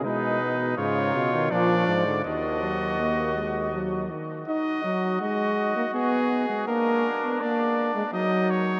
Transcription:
<<
  \new Staff \with { instrumentName = "Trumpet" } { \time 3/4 \key ees \minor \tempo 4 = 82 ces''4 des''4 d''4 | ees''2~ ees''8 r8 | ees''4 ees''4 aes'4 | bes'4 d''4 ees''8 des''8 | }
  \new Staff \with { instrumentName = "Flugelhorn" } { \time 3/4 \key ees \minor ees'4 f'4 d'8 r8 | ges'2~ ges'8 r8 | ges'2. | d'2 ees'4 | }
  \new Staff \with { instrumentName = "Euphonium" } { \clef bass \time 3/4 \key ees \minor aes8 ces8 des8. ees16 f8. d16 | ees8 ges8 bes8 aes8 ges8 ees8 | ees'8 ges8 aes8. bes16 ces'8. aes16 | bes8. ces'16 bes8. aes16 ges4 | }
  \new Staff \with { instrumentName = "Bass trombone" } { \clef bass \time 3/4 \key ees \minor ces4 aes,8 ces8 bes,8 aes,8 | ees,2~ ees,8 r8 | r2. | r2. | }
>>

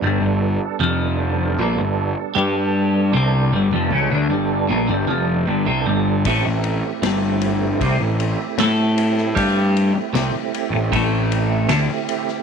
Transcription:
<<
  \new Staff \with { instrumentName = "Tonewheel organ" } { \time 4/4 \key g \mixolydian \tempo 4 = 77 <g b d' a'>1~ | <g b d' a'>1 | <a c' e' g'>1~ | <a c' e' g'>1 | }
  \new Staff \with { instrumentName = "Clean electric guitar" } { \clef bass \time 4/4 \key g \mixolydian g,16 g,8 r16 f,4 bes,16 g,8 r16 g4 | c8 g,16 f,16 cis16 d16 g,8 bes,16 g,16 f,8 g,16 c16 g,8 | a,16 a,8 r16 g,4 c16 a,8 r16 a4 | g8. r16 c16 r8 a,16 a,4 d16 r8. | }
  \new Staff \with { instrumentName = "Picked electric bass" } { \clef bass \time 4/4 \key g \mixolydian g,,16 g,,8 r16 f,,4 bes,,16 g,,8 r16 g,4 | c,8 g,,16 f,,16 cis,16 d,16 g,,8 bes,,16 g,,16 f,,8 g,,16 c,16 g,,8 | a,,16 a,,8 r16 g,,4 c,16 a,,8 r16 a,4 | g,8. r16 c,16 r8 a,,16 a,,4 d,16 r8. | }
  \new DrumStaff \with { instrumentName = "Drums" } \drummode { \time 4/4 r4 r4 r4 r4 | r4 r4 r4 r4 | <bd cymr>8 cymr8 <cymr sn>8 cymr8 <bd cymr>8 cymr8 <cymr sn>8 cymr16 sn16 | <bd cymr>8 cymr8 <cymr sn>8 cymr8 <bd cymr>8 cymr8 <cymr sn>8 cymr16 sn16 | }
>>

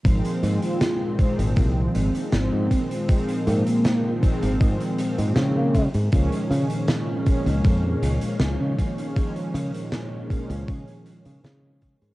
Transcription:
<<
  \new Staff \with { instrumentName = "String machine" } { \time 4/4 \key aes \major \tempo 4 = 79 r1 | r1 | <bes ees' des'' f''>1~ | <bes ees' des'' f''>1 | }
  \new Staff \with { instrumentName = "Soft synth lead" } { \time 4/4 \key aes \major r8. f'8 r4. r16 c'8 r8 | r8 bes16 bes8 r2 bes16 r8 | r1 | r1 | }
  \new Staff \with { instrumentName = "Analog polysynth" } { \clef bass \time 4/4 \key aes \major <bes, ees f aes c'>4. <bes, ees f aes c'>2~ <bes, ees f aes c'>8 | <bes, ees f aes c'>4. <bes, ees f aes c'>2 r8 | <bes, ees f aes des'>4. <bes, ees f aes des'>2~ <bes, ees f aes des'>8 | <bes, ees f aes des'>4. <bes, ees f aes des'>2~ <bes, ees f aes des'>8 | }
  \new Staff \with { instrumentName = "Fingered electric bass" } { \clef bass \time 4/4 \key aes \major aes,,16 r16 aes,16 r4 aes,,16 c,8 aes,,16 r16 aes,,16 aes,16 r8 | r8 aes,16 r4 aes,,16 aes,16 r8 aes,16 des8. aes,16 | des,16 r16 des16 r4 des,16 f,8 des,16 r16 des,16 des16 r8 | r8 des16 r4 des,16 des16 r8 des16 des8. aes,16 | }
  \new DrumStaff \with { instrumentName = "Drums" } \drummode { \time 4/4 <hh bd>16 hh16 hh16 hh16 <hh sn>8 <hh bd>16 hh16 <hh bd>8 hh16 hh16 <hh sn>8 <hh bd>16 hh16 | <hh bd>16 hh16 hh16 hh16 <hh sn>8 <hh bd>16 hh16 <hh bd>16 hh16 hh16 hh16 <hh sn>8 <hh bd>16 hh16 | <hh bd>16 hh16 hh16 hh16 <hh sn>8 <hh bd>16 hh16 <hh bd>8 hh16 hh16 <hh sn>8 <hh bd>16 hh16 | <hh bd>16 hh16 hh16 hh16 <hh sn>8 <hh bd>16 hh16 <hh bd>16 hh16 hh16 hh16 <hh sn>8 <hh bd>16 hh16 | }
>>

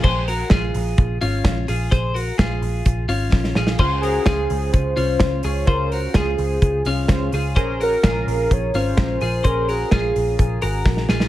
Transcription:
<<
  \new Staff \with { instrumentName = "Soft synth lead" } { \time 4/4 \key bes \minor \tempo 4 = 128 r1 | r1 | r8 aes'4. c''4. des''8 | bes'4 aes'8 aes'8 aes'4. r8 |
r8 bes'4. des''8 c''4. | bes'8 aes'4. aes'4. r8 | }
  \new Staff \with { instrumentName = "Clean electric guitar" } { \time 4/4 \key bes \minor <aes' c''>8 <ges' bes'>8 <f' aes'>4. <des' f'>4 <f' aes'>8 | <aes' c''>8 <ges' bes'>8 <f' aes'>4. <des' f'>4 <f' aes'>8 | <aes' c''>8 <ges' bes'>8 <f' aes'>4. <des' f'>4 <f' aes'>8 | <aes' c''>8 <ges' bes'>8 <f' aes'>4. <des' f'>4 <f' aes'>8 |
<aes' c''>8 <ges' bes'>8 <f' aes'>4. <des' f'>4 <f' aes'>8 | <aes' c''>8 <ges' bes'>8 <f' aes'>4. <ges' bes'>4 <f' aes'>8 | }
  \new Staff \with { instrumentName = "Synth keys" } { \time 4/4 \key bes \minor r1 | r1 | <des' f' c''>1 | <des' f' c''>2. <des' f' c''>4 |
<des' aes' bes'>1 | <des' aes' bes'>1 | }
  \new Staff \with { instrumentName = "Picked electric bass" } { \clef bass \time 4/4 \key bes \minor bes,,4 bes,,8 bes,,8 bes,,8 aes,,8 bes,,8 bes,,8 | bes,,4 bes,,8 bes,,8 bes,,8 aes,,8 bes,,8 bes,,8 | des,4 des,8 des,8 des,8 c,8 des,8 des,8 | des,4 des,8 des,8 des,8 c,8 des,8 des,8 |
bes,,4 bes,,8 bes,,8 bes,,8 aes,,8 bes,,8 bes,,8 | bes,,4 bes,,8 bes,,8 bes,,8 aes,,8 bes,,8 bes,,8 | }
  \new DrumStaff \with { instrumentName = "Drums" } \drummode { \time 4/4 <cymc bd>8 hho8 <hh bd sn>8 hho8 <hh bd>8 hho8 <hh bd sn>8 hho8 | <hh bd>8 hho8 <hh bd sn>8 hho8 <hh bd>8 hho8 <bd sn>16 sn16 sn16 sn16 | <cymc bd>8 hho8 <hh bd sn>8 hho8 <hh bd>8 hho8 <hh bd sn>8 hho8 | <hh bd>8 hho8 <hh bd sn>8 hho8 <hh bd>8 hho8 <hh bd sn>8 hho8 |
<hh bd>8 hho8 <hh bd sn>8 hho8 <hh bd>8 hho8 <hh bd sn>8 hho8 | <hh bd>8 hho8 <hh bd sn>8 hho8 <hh bd>8 hho8 <bd sn>16 sn16 sn16 sn16 | }
>>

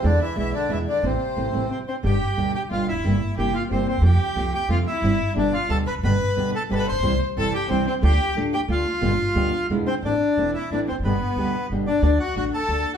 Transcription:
<<
  \new Staff \with { instrumentName = "Bandoneon" } { \time 3/4 \key a \minor \tempo 4 = 181 << { d'8 e'8 e'8 d'8 e'8 d'8 | c'2 c''8 c''8 | \key g \mixolydian g''4. g''8 f''8 e''8~ | e''4 g''8 f''8 c''8 c''8 |
g''4. g''8 f''8 e''8~ | e''4 d''8 f''8 a''8 b''8 | b''4. a''8 b''32 a''32 b''16 c'''8~ | c'''8 r8 a''8 g''8 c''8 c''8 |
g''4 r8 g''8 f''4~ | f''2 r8 c''8 | d''4. e''8 d''8 c''8 | b'2 r8 d''8 |
d''8 fis''8 fis''8 a''4~ a''16 fis''16 | } \\ { d8 e8 e8 d8 e8 d8 | c2 c'8 c'8 | g'4. g'8 f'8 e'8~ | e'4 g'8 f'8 c'8 c'8 |
g'4. g'8 f'8 e'8~ | e'4 d'8 f'8 a'8 b'8 | b'4. a'8 b'16 b'16 c''8~ | c''8 r8 a'8 g'8 c'8 c'8 |
g'4 r8 g'8 f'4~ | f'2 r8 c'8 | d'4. e'8 d'8 c'8 | b2 r8 d'8 |
d'8 fis'8 fis'8 a'4~ a'16 r16 | } >> }
  \new Staff \with { instrumentName = "Violin" } { \time 3/4 \key a \minor d''8 e''8 e''8 d''8 e''8 d''8 | c''2 c'8 c'8 | \key g \mixolydian g'4. g'8 f'8 e'8~ | e'4 g'8 f'8 c'8 c'8 |
g'4. g'8 f'8 e'8~ | e'4 d'8 f'8 a'8 b'8 | b'4. a'8 b'32 a'32 b'16 c''8~ | c''8 r8 a'8 g'8 c'8 c'8 |
g'4 r8 g'8 f'4~ | f'2 r8 c'8 | d'4. e'8 d'8 c'8 | b2 r8 d'8 |
d'8 fis'8 fis'8 a'4~ a'16 r16 | }
  \new Staff \with { instrumentName = "Nylon-string guitar" } { \time 3/4 \key a \minor <b, e gis b e'>16 r8. <b, e gis b e'>8 r8 <b, e gis b e'>8 r8 | <e a c'>8 r8 <e a c'>8 <e a c'>8 r4 | \key g \mixolydian <b, d g b g'>16 r8. <b, d g b g'>8 r8 <b, d g b g'>8 r8 | <c g bes e' g'>16 r8. <c g bes e' g'>8 r8 <c g bes e' g'>8 r8 |
<c f a c' f'>16 r8. <c f a c' f'>8 r8 <c f a c' f'>8 r8 | <g c' e'>16 r8. <b, d g b g'>8 r8 <b, d g b g'>8 r8 | <b, d g b g'>16 r8. <b, d g b g'>8 r8 <b, d g b g'>8 r8 | <c e g c' e'>16 r8. <c e g c' e'>8 r8 <c e g c' e'>8 r8 |
<d a d' f'>16 r8. <d a d' f'>8 r8 <d a d' f'>8 r8 | <b, d g b g'>16 r8. <b, d g b g'>8 r8 <b, d gis b e'>8 r8 | <e a c' e'>16 r8. <e a c' e'>8 r8 <e a c' e'>8 r8 | <b, d g b g'>16 r8. <b, d g b g'>8 r8 <b, d g b g'>8 r8 |
<d a d' fis'>8 r8 <d a d' fis'>8 r8 <d a d' fis'>8 r8 | }
  \new Staff \with { instrumentName = "Upright bass" } { \clef bass \time 3/4 \key a \minor e,16. r8 r32 b,,16. r8 r32 e,16. r8 r32 | a,,16. r8 r32 a,,16. r32 a,,16. r4 r32 | \key g \mixolydian g,,16. r8 r32 d,16. r8 r32 g,,16. r16 e,,32 f,,32 fis,,32 | g,,16. r8 r32 g,,16. r8 r32 g,,16. r16 d,32 ees,32 e,32 |
f,16. r8 r32 c,16. r8 r32 f,16. r8 r32 | g,,16. r8 r32 g,,16. r8 r32 d,16. r16 e,,32 f,,32 fis,,32 | g,,16. r8 r32 d,16. r8 r32 g,,16. r16 a,,32 bes,,32 b,,32 | c,16. r8 r32 g,,16. r8 r32 c,16. r8 r32 |
d,16. r8 r32 a,,16. r8 r32 d,16. r8 r32 | g,,16. r8 r32 d,16. r8 r32 e,16. r8 r32 | a,,16. r8 r32 e,,16. r8 r32 a,,16. r16 e,,32 f,,32 fis,,32 | g,,16. r8 r32 d,16. r8 r32 g,,16. r8 r32 |
d,16. r8 r32 a,,16. r8 r32 d,16. r8 r32 | }
>>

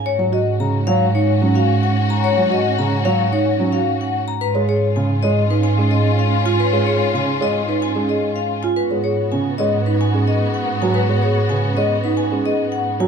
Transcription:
<<
  \new Staff \with { instrumentName = "Vibraphone" } { \time 4/4 \key gis \dorian \tempo 4 = 110 cis''16 r16 dis''16 r16 ais''16 r16 eis''16 r16 cis''16 r8 eis''16 r16 fis''16 r16 ais''16 | cis''16 r16 dis''16 r16 ais''16 r16 eis''16 r16 cis''16 r8 eis''16 r16 fis''16 r16 ais''16 | b'16 r16 cis''16 r16 gis''16 r16 dis''16 r16 b'16 gis''16 r16 dis''16 r16 eis''16 r16 gis''16 | b'16 r16 cis''16 r16 gis''16 r16 dis''16 r16 b'16 gis''16 r16 dis''16 r16 eis''16 r16 gis''16 |
b'16 r16 cis''16 r16 gis''16 r16 dis''16 r16 b'16 gis''16 r16 dis''16 r16 fis''16 r16 gis''16 | b'16 r16 cis''16 r16 gis''16 r16 dis''16 r16 b'16 gis''16 r16 dis''16 r16 fis''16 r16 gis''16 | }
  \new Staff \with { instrumentName = "Marimba" } { \time 4/4 \key gis \dorian r16 cis''16 fis'16 r8. cis''16 r16 dis'16 r16 cis'16 fis'16 r4 | r16 cis''16 fis'16 r8. cis''16 r16 dis'16 r16 cis'16 fis'16 r4 | r16 cis''16 gis'16 r8. cis''16 r16 dis'16 r16 cis'16 gis'16 r8. eis'16 | r16 cis''16 gis'16 r8. cis''16 r16 dis'16 r16 cis'16 gis'16 r8. eis'16 |
r16 cis''16 gis'16 r16 cis'16 r16 cis''16 r16 dis'16 r16 cis'16 gis'16 r8. fis'16 | r16 cis''16 gis'16 r16 cis'16 r16 cis''16 r16 dis'16 r16 cis'16 gis'16 r8. fis'16 | }
  \new Staff \with { instrumentName = "String section" } { \time 4/4 \key gis \dorian <cis' fis'>1~ | <cis' fis'>2.~ <cis' fis'>8. r16 | <cis' eis'>1~ | <cis' eis'>2.~ <cis' eis'>8. r16 |
<b fis'>1~ | <b fis'>2.~ <b fis'>8. r16 | }
  \new Staff \with { instrumentName = "Grand piano" } { \clef bass \time 4/4 \key gis \dorian r16 fis16 r8 cis16 r16 fis16 r8. fis16 r4 r16 | r16 fis16 r8 cis16 r16 fis16 r8. fis16 r4 r16 | r16 gis16 r8 cis16 r16 gis16 r8. gis16 r4 r16 | r16 gis16 r8 cis16 r16 gis16 r8. gis16 r4 r16 |
r16 gis16 r8 cis16 r16 gis16 r8. gis16 r4 fis16 | r16 gis16 r8 cis16 r16 gis16 r8. gis16 r4 fis16 | }
  \new Staff \with { instrumentName = "Double bass section" } { \clef bass \time 4/4 \key gis \dorian gis,1~ | gis,1 | gis,1~ | gis,1 |
gis,1~ | gis,1 | }
>>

